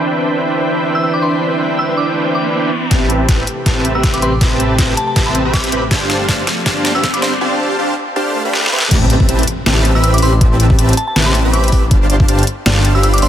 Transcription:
Already playing: E3 C4 D4 E4 B4 C5 E5 G5 B5, riser
0.95 E6
1.03 E6
1.14 D6
1.22 C6
1.79 E6
1.97 D6
2.35 D6
2.91 A1 C3 A3 C4 G4 B4 E5 A5, kick, snare, closed hi-hat, riser
3.10 closed hi-hat
3.29 A1 C4 B4, kick, snare, closed hi-hat
3.47 closed hi-hat
3.66 A1 C4 G4 B4 E5 A5, kick, snare, closed hi-hat
3.85 closed hi-hat
3.95 A1 C4 G4 B4 E5 B5 E6
4.04 kick, snare, closed hi-hat
4.14 D6, closed hi-hat
4.22 A1 C4 G4 B4 E5 B5 C6, closed hi-hat
4.41 A1 C4 G4 B4 E5 A5, kick, snare, closed hi-hat
4.60 closed hi-hat
4.78 A1 C4 G4 B4 E5 A5, kick, snare, closed hi-hat
4.97 A5, closed hi-hat
5.07 A5
5.16 A1 C4 G4 B4 E5 A5, kick, snare, closed hi-hat
5.26 C6
5.35 closed hi-hat
5.45 A1 C4 G4 B4 E5 B5
5.53 D6, kick, snare, closed hi-hat
5.64 closed hi-hat
5.72 A1 C4 G4 B4 E5 B5, closed hi-hat
5.91 G1 F3 A3 C4 D4 G4 C5 F5 A5, kick, snare, closed hi-hat
6.10 snare, closed hi-hat
6.29 G1 D4 C5 F5, kick, snare, closed hi-hat
6.47 snare, closed hi-hat
6.66 G1 D4 G4 C5 F5 A5, kick, snare, closed hi-hat
6.85 snare, closed hi-hat
6.95 G1 D4 G4 C5 F5 B5 E6
7.03 E6, kick, snare, closed hi-hat
7.13 D6, closed hi-hat
7.22 G1 D4 G4 C5 F5 B5 C6, snare, closed hi-hat
7.41 D4 G4 C5 F5 A5
7.79 D4 G4 C5 F5 A5
8.16 D4 G4 C5 F5 A5, swell
8.45 D4 G4 C5 F5 B5
8.54 snare
8.66 snare
8.72 C4 G4 B4 E5 B5
8.79 snare
8.91 A1 C4 G4 B4 E5 A5, kick, closed hi-hat, crash, impact
9.10 closed hi-hat
9.20 kick
9.29 A1 C4 G4 B4 E5 A5, closed hi-hat
9.39 closed hi-hat
9.43 closed hi-hat
9.47 closed hi-hat
9.66 A1 C4 G4 B4 E5 A5, snare, closed hi-hat
9.85 closed hi-hat
9.95 A1 C4 G4 B4 E5 B5 E6
10.04 E6, closed hi-hat
10.14 D6, closed hi-hat
10.18 closed hi-hat
10.22 A1 C4 G4 B4 E5 B5 C6, open hi-hat
10.41 A1 C4 G4 B4 E5 A5, kick, closed hi-hat
10.60 closed hi-hat
10.70 kick
10.79 A1 C4 G4 B4 E5 A5, closed hi-hat
10.89 closed hi-hat
10.93 closed hi-hat
10.97 A5, closed hi-hat
11.07 A5
11.16 A1 C4 G4 B4 E5 A5, snare, closed hi-hat
11.26 C6
11.35 closed hi-hat
11.45 A1 C4 G4 B4 E5 B5
11.53 D6, closed hi-hat
11.64 closed hi-hat
11.68 closed hi-hat
11.72 A1 C4 G4 B4 E5 B5, kick, open hi-hat
11.91 G1 D4 G4 C5 F5 A5, kick, closed hi-hat
12.10 closed hi-hat
12.20 kick
12.28 G1 D4 G4 C5 F5 A5, closed hi-hat
12.39 closed hi-hat
12.43 closed hi-hat
12.47 closed hi-hat
12.66 G1 D4 G4 C5 F5 A5, snare, closed hi-hat
12.85 closed hi-hat
12.95 G1 D4 G4 C5 F5 B5 E6
13.03 E6, closed hi-hat
13.14 D6, closed hi-hat
13.18 closed hi-hat
13.22 G1 D4 G4 C5 F5 B5 C6, open hi-hat

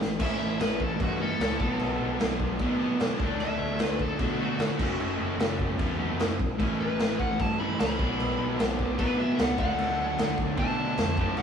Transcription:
0.00 A1 A2 E3, snare
0.19 A1 A2 E3 A3 C#4 E4 E5, kick, crash
0.41 A1
0.60 A1 B4, snare, crash
0.80 A1 A4, kick
1.00 G2 F#4, kick, crash
1.19 A2 E3 A3 C#4 E4 A4
1.39 C#2 A2 E3 A3 C#4 E4, snare, crash
1.59 B1 B2 F#3 B3 D4, kick
1.79 B1, crash
2.00 B1
2.20 B1, snare, crash
2.40 B1, kick
2.59 A2 B2 F#3 B3 D4, kick, crash
2.79 B2 F#3 B3 D4
3.00 B2, snare, crash
3.20 D2 D3 F#3 A3 D4, kick
3.40 D2 E5, crash
3.61 D2
3.79 D2 B4, snare, crash
3.99 D2 A4, kick
4.19 B2 D3 F#3 A3 D4 F#4, kick, crash
4.39 D3 F#3 A3 D4 F#4
4.59 D3, snare, crash
4.79 F#1 F#2 C#3 F#3 A3 C#4, kick, crash
4.99 F#1, crash
5.19 F#1
5.40 F#1, snare, crash
5.59 F#1, kick
5.79 E2 F#2 C#3 F#3 A3 C#4, kick, crash
5.98 F#2 C#3 F#3 A3 C#4
6.19 F#2, snare, crash
6.39 B1, kick
6.58 A1 A2 E3 A3 C#4 E4, kick, crash
6.81 A1 B4
6.99 A1, snare, crash
7.20 A1 F#5, kick
7.40 G2 A5, kick, crash
7.59 A2 E3 A3 C#4 E4 B5
7.79 C#2 A2 E3 A3 C#4 E4 B5, snare, crash
7.99 B1 B2 F#3 B3 D4, kick
8.20 B1, crash
8.39 B1
8.59 B1, snare, crash
8.79 B1, kick
8.97 A2 B2 F#3 B3 D4 B4, kick, crash
9.18 B2 F#3 B3 D4 E5
9.39 C#2 F#5, snare, crash
9.58 D2 D3 F#3 A3 D4 F#5, kick
9.78 D2, crash
9.97 D2
10.18 D2, snare, crash
10.38 D2, kick
10.57 B2 D3 F#3 A3 D4 A5, kick, crash
10.77 D3 F#3 A3 D4
10.98 F2, snare, crash
11.17 F#1 F#2 C#3 F#3 A3 C#4, kick
11.37 F#1 F#5, crash

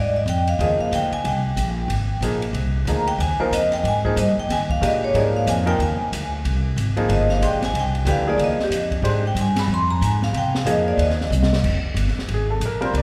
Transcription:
Already playing: G#2 D5
0.16 D#5
0.26 F2 G5, hi-hat pedal, ride
0.47 F5, ride
0.59 D#2 F3 A#3 D#4 G#4 D#5, ride
0.79 F5, muted upright bass stroke
0.91 D2 G5, hi-hat pedal, ride
1.11 G#5, muted upright bass stroke, ride
1.24 C2 G5, ride
1.56 A#1, hi-hat pedal, ride
1.88 G#1, ride
2.20 A#1 F3 A#3 D#4 G#4, hi-hat pedal, ride
2.42 ride
2.53 C2, ride
2.85 D2 F3 A#3 D#4 G#4, hi-hat pedal, ride
2.90 A#5
3.07 G5, ride
3.18 D#2 G#5, ride
3.39 F3 A#3 D#4 A#4 C5, muted upright bass stroke
3.51 F2 D#5, hi-hat pedal, ride
3.72 G5, snare, ride
3.84 G#2, ride
3.88 G#5
4.05 F3 A#3 D#4 G#4 C5, kick
4.16 G2 D#5, hi-hat pedal, ride
4.37 G5, muted upright bass stroke
4.49 D#2 G#5, snare, ride
4.70 F5, kick
4.81 A#2 D#3 G#3 D4 G4, hi-hat pedal, ride
4.86 D#5
5.04 C#5
5.14 G#2 F3 A#3 D#4 G#4 D5, ride
5.36 F5
5.47 F2 G#5, hi-hat pedal, ride
5.66 F3 A#3 D#4 A#4 G5, ride
5.79 D#2 G#5, ride
5.99 muted upright bass stroke
6.12 D2, hi-hat pedal, ride
6.44 C2, ride
6.76 G#1, hi-hat pedal, ride
6.97 F3 A#3 D#4 G#4, ride
7.09 G1, ride
7.13 D#5
7.29 F5, snare
7.41 A#1 G#3 D4 G4 C5 G5, hi-hat pedal, ride
7.62 G#5, snare, ride
7.74 C2, ride
7.79 G5
7.95 ride
8.05 D2 E3 A3 D4 G4, hi-hat pedal, ride
8.11 F5
8.27 F3 A#3 D#4 G#4 D5
8.38 D#2, ride
8.44 D#5
8.57 muted upright bass stroke, snare
8.64 G4
8.69 F2, hi-hat pedal, ride
8.91 kick, ride
9.02 G#2 G#3 D4 G4 C5, ride
9.27 G5
9.35 G2, hi-hat pedal, ride
9.41 G#5
9.56 B5, snare, ride
9.68 F2
9.74 C6
9.91 A#5
10.01 G#2 G#5, hi-hat pedal, ride
10.22 F5, snare
10.33 C3, ride
10.38 G5
10.55 F5, snare
10.65 F2 F3 A#3 D#4 G#4, hi-hat pedal, ride
10.71 D#5
10.88 D5
10.97 D#2, ride
11.03 D#5
11.10 snare
11.21 snare
11.30 C2, hi-hat pedal
11.43 snare
11.53 snare
11.64 F1, kick, crash
11.82 muted upright bass stroke
11.94 G1, hi-hat pedal, ride
12.08 snare
12.15 muted upright bass stroke, snare
12.28 G#1, ride
12.34 G#4
12.50 A4
12.60 A#1, hi-hat pedal, ride
12.65 A#4
12.80 G3 C4 F4 A#4, ride
12.85 C5
12.93 C2, ride
12.98 D5

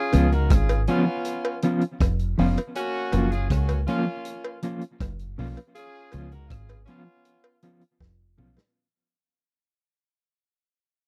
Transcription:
Already playing: C#4 F4 G#4
0.13 C#2 C#3 F3 B3 C#4 F4, closed hi-hat, cowbell
0.32 D#4 F#4 A#4, closed hi-hat
0.50 G#1 G#2 C#4 F4 G#4, kick, cross-stick, closed hi-hat
0.69 closed hi-hat, cowbell
0.87 F3 B3 C#4 F4, closed hi-hat
1.07 muted clean electric guitar stroke
1.25 closed hi-hat
1.45 cowbell
1.62 F3 B3 C#4 F4, closed hi-hat
1.81 closed hi-hat
2.00 F1 F2, kick, cross-stick, closed hi-hat, cowbell
2.19 closed hi-hat
2.38 F1 F2 F3 B3 C#4 F4, open hi-hat
2.57 closed hi-hat, cowbell
2.75 A#3 C#4 F#4, closed hi-hat
3.12 F#1 F#2 F3 A#3 C#4 F4, closed hi-hat, cowbell
3.31 C#4 F4 G#4, closed hi-hat
3.50 C#2 C#3 A#3 C#4 F#4, kick, cross-stick, closed hi-hat
3.68 closed hi-hat, cowbell
3.87 F3 A#3 C#4 F4, closed hi-hat
4.07 muted clean electric guitar stroke
4.25 closed hi-hat
4.44 cowbell
4.62 F3 A#3 C#4 F4, closed hi-hat
4.81 closed hi-hat
5.00 F#1 F#2, kick, cross-stick, closed hi-hat, cowbell
5.19 closed hi-hat
5.38 B1 B2 F3 A#3 C#4 F4, open hi-hat
5.57 closed hi-hat, cowbell
5.75 C#4 F4 G#4, closed hi-hat
6.12 C#2 C#3 F3 B3 C#4 F4, closed hi-hat, cowbell
6.31 D#4 F#4 A#4, closed hi-hat
6.49 G#1 G#2 C#4 F4 G#4, kick, cross-stick, closed hi-hat
6.69 closed hi-hat, cowbell
6.86 F3 B3 C#4 F4, closed hi-hat
7.06 muted clean electric guitar stroke
7.25 closed hi-hat
7.44 cowbell
7.62 F3 B3 C#4 F4, closed hi-hat
7.81 closed hi-hat
8.00 F1 F2, kick, snare, cowbell
8.38 B1 B2 F3 B3 C#4 F4, mid tom
8.57 snare, cowbell

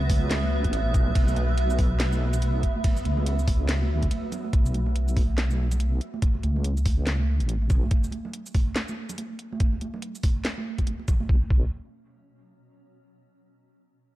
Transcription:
Already playing: C#2 F#3 B3 F#4 B4 E5
0.09 kick, open hi-hat, high conga
0.31 snare, clap, closed hi-hat, ride
0.43 high conga
0.64 A1, kick, closed hi-hat, muted conga
0.73 closed hi-hat, ride, high conga
0.86 muted conga
0.94 B1, kick, closed hi-hat, low conga, shaker
1.07 high conga
1.15 B1, kick, closed hi-hat, ride
1.27 muted conga, shaker
1.36 closed hi-hat, high conga
1.49 low conga
1.58 closed hi-hat, ride
1.70 shaker
1.79 kick, open hi-hat, high conga
2.00 snare, clap, closed hi-hat, ride
2.12 high conga, shaker
2.33 closed hi-hat, low conga, shaker
2.42 closed hi-hat, ride, high conga
2.63 kick, closed hi-hat
2.76 high conga
2.84 kick, closed hi-hat, ride
2.96 muted conga, shaker
3.05 C#2, closed hi-hat, high conga
3.17 low conga
3.26 closed hi-hat, ride
3.39 shaker
3.48 kick, open hi-hat, high conga
3.69 snare, clap, closed hi-hat, ride
3.82 high conga
3.90 D2
4.02 kick, closed hi-hat, muted conga
4.11 closed hi-hat, ride, high conga
4.23 muted conga
4.32 closed hi-hat, low conga, shaker
4.44 high conga
4.53 B1, kick, closed hi-hat
4.66 muted conga, shaker
4.74 closed hi-hat, high conga
4.86 low conga
4.96 closed hi-hat
5.08 shaker
5.17 kick, open hi-hat, high conga
5.38 snare, clap, closed hi-hat
5.50 high conga, shaker
5.71 closed hi-hat, low conga, shaker
5.80 closed hi-hat, high conga
6.01 closed hi-hat
6.14 high conga
6.22 kick, closed hi-hat
6.35 muted conga
6.43 C#2, closed hi-hat, high conga
6.56 low conga
6.64 closed hi-hat
6.77 shaker
6.86 kick, open hi-hat, high conga
7.07 snare, clap, closed hi-hat
7.20 high conga
7.40 A1, closed hi-hat, muted conga
7.49 closed hi-hat, high conga
7.62 muted conga
7.70 B1, kick, closed hi-hat, low conga, shaker
7.83 high conga
7.91 kick, closed hi-hat
8.04 muted conga, shaker
8.12 closed hi-hat, high conga
8.25 low conga
8.33 closed hi-hat
8.46 shaker
8.54 kick, open hi-hat, high conga
8.76 snare, clap, closed hi-hat
8.88 high conga, shaker
9.09 closed hi-hat, low conga, shaker
9.18 closed hi-hat, high conga
9.39 closed hi-hat
9.53 high conga
9.60 kick, closed hi-hat
9.73 muted conga
9.81 closed hi-hat, high conga
9.94 low conga
10.02 closed hi-hat
10.15 shaker
10.23 kick, open hi-hat, high conga
10.45 snare, clap, closed hi-hat
10.58 high conga
10.78 kick, closed hi-hat, muted conga
10.87 closed hi-hat, high conga
10.99 muted conga
11.08 kick, closed hi-hat, low conga, shaker
11.20 high conga
11.29 B1, kick
11.50 B1, kick

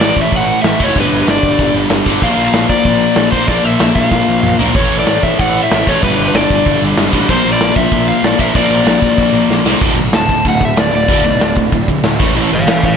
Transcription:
Already playing: A2 E3 A3 D5
0.01 A1, snare, crash
0.17 A1, kick
0.22 E5
0.32 A1, kick, crash
0.37 F#5
0.62 A1 E5, snare, crash
0.79 F#1 A2 E3 A3, kick
0.84 C#5
0.94 G1 G2 D3 G3, kick, crash
1.00 B4
1.12 G1
1.23 B4
1.27 G1 D5, snare, crash
1.43 G1, kick
1.59 G1, kick, crash
1.74 G1
1.90 G1, snare, crash
2.06 G1 G2 D3 G3, kick
2.22 A#1 A#2 F3 F5, kick, crash
2.26 A#3
2.37 A#1
2.53 A#1, snare, crash
2.69 A#1 D5, kick
2.85 A#1, kick, crash
3.16 A#1, snare, crash
3.32 A#1 F3 A#3 C5, kick
3.36 A#2
3.47 A#1 A#2 F3 A#3 D5, kick, crash
3.64 A#1 E5
3.80 A#1, snare, crash
3.95 A#1 F5, kick
4.12 A#1, kick, snare
4.29 A#1
4.43 A#1, mid tom
4.59 A#1 A#2 F3 A#3, floor tom
4.74 A1 A2 E3 C#5, kick, crash
4.79 A3
4.92 A1
4.99 D5
5.07 A1, snare, crash
5.23 A1 E5, kick
5.39 A1 F#5, kick, crash
5.63 E5
5.71 A1, snare, crash
5.87 A1 A2 E3 A3 C#5, kick
6.01 G1 G2 D3 G3 B4, kick, crash
6.18 G1
6.28 B4
6.34 G1 D5, snare, crash
6.50 G1, kick
6.66 G1, kick, crash
6.82 G1
6.97 G1, snare, crash
7.12 A1 D3 G3, kick
7.16 G2
7.28 A#1 A#2 F3 A#3 C5, kick, crash
7.45 A#1
7.52 D5
7.60 A#1, snare, crash
7.76 A#1 E5, kick
7.92 A#1, kick, crash
8.08 F5
8.23 A#1 D5, snare, crash
8.38 A#1 A#2 F3 A#3 E5, kick
8.54 A#1 A#2 F3 A#3 D5, kick, crash
8.69 A#1
8.85 A#1, snare, crash
9.02 A#1, kick
9.18 A#1, kick, crash
9.33 A#1
9.49 A#1, snare
9.65 C2 F3 A#3, snare
9.69 A#2
9.81 D1 D2 A2 D3, kick, crash
9.96 B1 D2 A2
10.12 D1 D2 A2 A5, snare, crash
10.29 D2 A2, kick
10.45 D1 D2 A2 F#5, kick, crash
10.61 D2 A2 E5, kick
10.77 D1 D2 A2 D5, snare, crash
10.93 D1 D2 A2 D5
11.08 D1 D2 A2 D3, kick, crash
11.23 B1 D2 A2
11.39 D1 D2 A2, snare, crash
11.55 D2 A2, kick
11.72 D1 D2 A2, kick, crash
11.88 D2 A2, kick
12.03 D1 D2 A2, snare, crash
12.19 A1 A2 E3 A3, kick
12.35 A1 A2 E3 A3, crash
12.51 G1 A2 E3 C#5 F5
12.67 A1 A2 E3 C#5 F5, snare, crash
12.83 A2 E3 C#5 F5, kick

